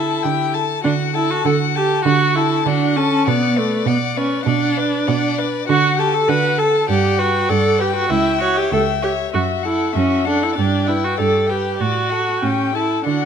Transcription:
Already playing: D3 E4 A4 A5
0.22 D3 G4 G5
0.53 A4 A5
0.82 D3 D4 F#4 F#5
1.13 E4 A4 A5
1.31 F#4
1.44 D3 F#4 A4 F#5
1.75 G4 A4 A5
2.04 D3 F#4 F#5
2.35 E4 A4 A5
2.66 D3 D4 F#4 F#5
2.96 C#4 A4 A5
3.26 B2 B3 D5 F#5
3.56 A3 B4 D5
3.86 B2 B3 D5 F#5
4.17 C#4 B4 D5
4.46 B2 D4 D5 F#5
4.77 B4 D5
5.07 B2 D5 F#5
5.38 B4 D5
5.67 D3 F#4 F#5
5.98 G4 A4 A5
6.14 A4
6.28 D3 F#4 B4 F#5
6.57 A4 A5
6.88 G2 G4 D5 F#5
7.18 F#4 B4 G5
7.48 G2 A4 D5 F#5
7.79 G4 B4 G5
7.95 F#4
8.09 C#2 E4 E5 G5
8.40 F#4 C#5 E5
8.57 G4
8.70 C#2 A4 E5 G5
9.02 G4 C#5 E5
9.32 F#2 F#4 E5
9.63 E4 A4 F#5
9.93 F#2 C#4 F#4 E5
10.25 D4 A4 F#5
10.43 E4
10.55 G2 D4 G4 D5
10.86 E4 B4 G5
11.04 F#4
11.18 G2 G4 A4 D5
11.47 G4 B4 G5
11.79 A2 F#4 D5
12.10 A4 F#5
12.40 A2 C#4 G4 G5
12.75 E4 A4 A5
13.05 D3 D4 F#4 F#5

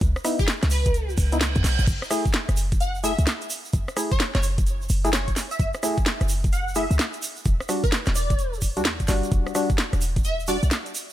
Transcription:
0.01 C#2, kick, closed hi-hat, shaker
0.16 cross-stick, shaker
0.24 B3 D#4 E4, cross-stick, open hi-hat, shaker
0.39 G#4, kick, closed hi-hat, shaker
0.48 snare, shaker
0.63 C#2, cross-stick, snare, closed hi-hat, shaker
0.70 B4, open hi-hat, shaker
0.85 kick, closed hi-hat, shaker
0.94 closed hi-hat, reverse cymbal, shaker
1.09 shaker
1.18 C#2, kick, open hi-hat, shaker
1.32 B3 D#4 E4, closed hi-hat, shaker
1.41 snare, shaker
1.55 E2, kick, closed hi-hat, shaker
1.64 B1, snare, open hi-hat, shaker
1.79 G#1, closed hi-hat, shaker
1.87 F#1, kick, closed hi-hat, crash, shaker
2.02 cross-stick, shaker
2.10 A3 E4 G#4, cross-stick, open hi-hat, shaker
2.25 kick, closed hi-hat, shaker
2.33 snare, shaker
2.49 F#1, cross-stick, closed hi-hat, shaker
2.57 open hi-hat, shaker
2.72 kick, closed hi-hat, shaker
2.80 F#5, closed hi-hat, shaker
2.95 shaker
3.04 A3 E4 G#4 E5, open hi-hat, shaker
3.18 C#2, closed hi-hat, shaker
3.27 snare, shaker
3.41 closed hi-hat, shaker
3.50 open hi-hat, shaker
3.65 shaker
3.73 F#1, kick, closed hi-hat, shaker
3.88 cross-stick, shaker
3.97 A3 E4 G#4, cross-stick, open hi-hat, shaker
4.11 C#5, kick, closed hi-hat, shaker
4.20 snare, shaker
4.35 F#1 C#5, cross-stick, snare, closed hi-hat, shaker
4.43 open hi-hat, shaker
4.58 kick, closed hi-hat, shaker
4.67 closed hi-hat, shaker
4.82 shaker
4.89 F#1, open hi-hat, shaker
5.04 A3 E4 G#4, closed hi-hat, shaker
5.13 C#5, snare, shaker
5.28 E1, kick, closed hi-hat, shaker
5.36 snare, open hi-hat, shaker
5.51 E5, closed hi-hat, shaker
5.60 F#1 E5, kick, closed hi-hat, shaker
5.74 cross-stick, shaker
5.83 A3 E4 G#4, cross-stick, open hi-hat, shaker
5.98 kick, closed hi-hat, shaker
6.06 snare, shaker
6.21 F#1, cross-stick, closed hi-hat, shaker
6.29 open hi-hat, shaker
6.44 kick, closed hi-hat, shaker
6.53 F#5, closed hi-hat, shaker
6.68 shaker
6.75 A3 E4 G#4 E5, open hi-hat, shaker
6.91 C#2, closed hi-hat, shaker
6.99 snare, shaker
7.13 closed hi-hat, shaker
7.22 open hi-hat, shaker
7.36 shaker
7.45 E1, kick, closed hi-hat, shaker
7.60 cross-stick, shaker
7.69 G3 D4 F#4, cross-stick, open hi-hat, shaker
7.84 B4, kick, closed hi-hat, shaker
7.92 snare, shaker
8.06 E1, cross-stick, snare, closed hi-hat, shaker
8.15 D5, open hi-hat, shaker
8.30 kick, closed hi-hat, shaker
8.39 closed hi-hat, shaker
8.54 shaker
8.62 kick, open hi-hat, shaker
8.77 E2 G3 D4 F#4, closed hi-hat, shaker
8.85 snare, shaker
9.00 kick, closed hi-hat, shaker
9.08 G1 G3 D4 F#4, snare, open hi-hat, shaker
9.23 closed hi-hat, shaker
9.32 E1, kick, closed hi-hat, shaker
9.47 cross-stick, shaker
9.55 G3 D4 F#4, cross-stick, open hi-hat, shaker
9.70 kick, closed hi-hat, shaker
9.78 snare, shaker
9.93 E1, cross-stick, closed hi-hat, shaker
10.01 open hi-hat, shaker
10.16 kick, closed hi-hat, shaker
10.24 E5, closed hi-hat, shaker
10.40 shaker
10.47 G3 D4 F#4 D5, open hi-hat, shaker
10.63 B1, closed hi-hat, shaker
10.71 snare, shaker
10.86 closed hi-hat, shaker
10.95 open hi-hat, shaker
11.10 shaker

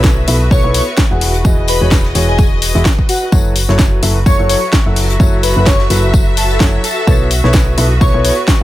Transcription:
Already playing: B1 B3 E4 F#4 A4 B4 C#5 E5
0.04 kick, snare, tambourine
0.28 B1 B3 E4 A4 B4 E5, open hi-hat, tambourine
0.51 B1 B3 E4 A4 B4 C#5, kick, tambourine
0.64 B1 B3 E4 A4 B4 C#5
0.74 C#5, open hi-hat, tambourine
0.97 kick, snare, tambourine
1.11 E1 E3 E4 F#4 G#4 F#5
1.21 open hi-hat
1.34 closed hi-hat
1.43 E1 E3 E4 F#4 G#4 D#5, kick, tambourine
1.68 B4, open hi-hat, tambourine
1.81 E1 E3 E4 F#4 G#4 C#5
1.91 kick, snare, tambourine
2.04 snare
2.15 E1 E3 E4 F#4 G#4 C#5, snare, open hi-hat, tambourine
2.28 G#4
2.38 kick, tambourine
2.62 open hi-hat, tambourine
2.75 E1 E3 E4 F#4 G#4 E5, closed hi-hat
2.85 kick, snare, tambourine
2.99 kick
3.09 F#4, open hi-hat, tambourine
3.22 F#4
3.32 F#1 F#3 E4 F#4 A4 C#5, kick, tambourine
3.56 open hi-hat, tambourine
3.69 F#1 F#3 E4 F#4 A4 C#5, snare
3.79 kick, snare, tambourine
4.03 F#1 F#3 E4 F#4 A4 E5, open hi-hat, tambourine
4.26 F#1 F#3 E4 F#4 A4 C#5, kick, tambourine
4.39 F#1 F#3 E4 F#4 A4 C#5
4.49 C#5, open hi-hat, tambourine
4.64 E5
4.72 kick, snare, tambourine
4.86 F#1 F#3 E4 F#4 A4 E5
4.96 open hi-hat
5.10 closed hi-hat
5.20 F#1 F#3 E4 F#4 A4 C#5, kick, tambourine
5.43 B4, open hi-hat, tambourine
5.56 F#1 F#3 E4 F#4 A4 B4
5.66 C#5, kick, snare, tambourine
5.80 snare
5.90 F#1 F#3 E4 F#4 A4 B4, snare, open hi-hat, tambourine
6.14 kick, tambourine
6.37 A4, open hi-hat, tambourine
6.50 closed hi-hat
6.60 F#1 F#3 E4 F#4 A4 C#5, kick, snare, tambourine
6.84 A4, open hi-hat, tambourine
7.07 B1 B3 E4 A4 B4 C#5, kick, tambourine
7.31 open hi-hat, tambourine
7.40 B1 E4 A4 B4
7.44 B3 B4 C#5, snare
7.53 kick, snare, tambourine
7.78 B1 B3 E4 A4 B4 E5, open hi-hat, tambourine
8.01 B1 B3 E4 A4 B4 C#5, kick, tambourine
8.14 B1 B3 E4 A4 B4 C#5
8.24 C#5, open hi-hat, tambourine
8.48 kick, snare, tambourine

